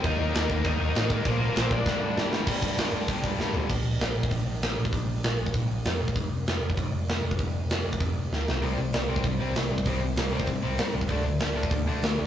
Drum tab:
CC |x---x---x---x---|x---x-----------|x---------------|x---------------|
HH |----------------|----------------|----o---o-------|----o---o---o---|
SD |----o-------o---|----o---o---o-o-|----o-------o---|----o-------o---|
FT |----------------|----------------|--------------o-|----------------|
BD |o-----o-o-----o-|o-----o-o-------|o-o-----o-o-----|o------oo------o|

CC |----------------|----------------|----------------|----------------|
HH |o---o---o---o---|o---o---o---o---|o---o---o-------|o---o---o---o---|
SD |----o-------o---|----o-------o---|----o-------o-o-|----o-------o---|
FT |----------------|----------------|----------------|----------------|
BD |o------oo------o|o------oo------o|o------oo-------|-------oo------o|

CC |----------------|----------------|
HH |o---o---o---o---|o---o---o---o---|
SD |----o-------o---|----o-------o---|
FT |----------------|----------------|
BD |o------oo------o|o------oo-------|